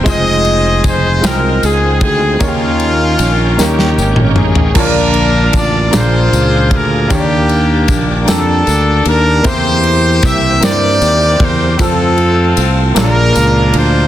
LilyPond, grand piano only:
<<
  \new Staff \with { instrumentName = "Grand piano" } { \time 6/8 \key ees \mixolydian \tempo 4. = 51 <aes c' ees' f' c''>4 r8 <aes c' ees' f' g''>4 r8 | <bes des' ees' f' g' des''>4 r8 <bes des' ees' g' bes'>4 r8 | \key bes \major <bes d' f' des'' d'' a''>4 r8 <bes d' f' aes' d''>4 r8 | <bes d' g' des'' d''>4 r8 <bes d' g' a'>4 r8 |
<bes c' e' g' c''>4 r8 <bes c' e' g' bes' c''>4 r8 | <c' f' a'>4 r8 <bes d' f' aes' des'' d''>4 r8 | }
  \new Staff \with { instrumentName = "Grand piano" } { \clef bass \time 6/8 \key ees \mixolydian r2. | ees4. r4. | \key bes \major d4. bes,4. | ees4. r4. |
e4. r4. | r4. bes,4. | }
>>